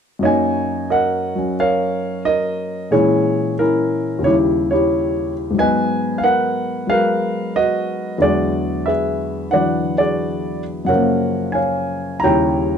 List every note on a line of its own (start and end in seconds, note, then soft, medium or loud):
0.19 2.90 F#2 soft
0.19 1.34 F#3 soft
0.19 2.92 A#3 soft
0.19 1.55 C#5 medium
0.19 0.89 D#5 medium
0.24 2.93 D#4 medium
0.24 0.88 G#5 medium
0.90 1.59 A#4 medium
0.90 2.22 D#5 medium
0.90 1.55 F#5 medium
1.35 2.90 F#3 soft
1.35 2.92 C#4 soft
1.60 2.25 A#4 medium
1.60 2.88 C#5 medium
1.60 2.22 F5 medium
2.25 2.88 A#4 medium
2.25 2.93 D#5 medium
2.91 4.24 A#2 soft
2.91 4.24 E3 soft
2.91 4.25 G#3 soft
2.91 3.59 C#4 soft
2.91 3.59 E4 soft
2.91 4.20 G#4 medium
2.91 3.54 C#5 medium
3.59 4.22 C#4 soft
3.59 4.22 E4 soft
3.59 4.21 A#4 medium
4.19 5.53 D#2 soft
4.19 5.55 C#3 soft
4.24 5.57 G3 soft
4.24 4.29 E4 medium
4.24 4.72 G4 medium
4.24 4.34 C#5 medium
4.30 4.72 E4 soft
4.71 5.54 E4 soft
4.71 5.54 G4 soft
4.71 5.32 C#5 medium
5.51 8.17 G#2 soft
5.51 6.85 F#3 soft
5.59 8.23 B3 soft
5.59 6.22 B4 medium
5.59 6.86 D#5 medium
5.59 6.22 G#5 medium
6.18 6.23 F5 medium
6.24 6.90 A#4 medium
6.24 6.90 B4 medium
6.24 6.85 F#5 medium
6.87 8.19 F#3 soft
6.87 8.20 G#3 soft
6.87 7.57 F5 medium
6.91 8.17 A#4 medium
6.91 7.55 B4 medium
7.56 8.17 F#4 medium
7.56 8.17 B4 medium
7.56 8.23 D#5 medium
8.18 10.87 E2 soft
8.18 9.51 D3 soft
8.18 9.53 F#3 soft
8.18 9.49 F#4 soft
8.18 8.89 D5 medium
8.23 10.89 G#3 soft
8.23 8.87 G#4 soft
8.86 9.99 G#4 soft
8.86 9.51 B4 soft
8.86 9.48 E5 medium
9.51 10.88 D3 soft
9.51 10.89 E3 soft
9.51 10.89 F#3 soft
9.51 10.84 B4 medium
9.51 9.97 D5 medium
9.51 9.99 F#5 medium
9.98 10.84 F#4 soft
9.98 10.85 G#4 soft
9.98 10.63 D5 medium
10.85 12.22 F#2 soft
10.85 12.23 C#3 soft
10.85 11.53 C#5 soft
10.85 11.57 F#5 medium
10.89 12.26 F3 soft
10.89 12.20 A#4 soft
10.95 12.27 A#3 soft
11.52 12.19 C#5 soft
11.52 12.19 F5 soft
11.52 12.24 G#5 medium
12.20 12.78 D#2 soft
12.20 12.78 C#5 medium
12.20 12.78 A#5 medium
12.24 12.78 C#3 soft
12.24 12.78 G3 soft
12.24 12.78 E4 soft
12.24 12.78 G5 medium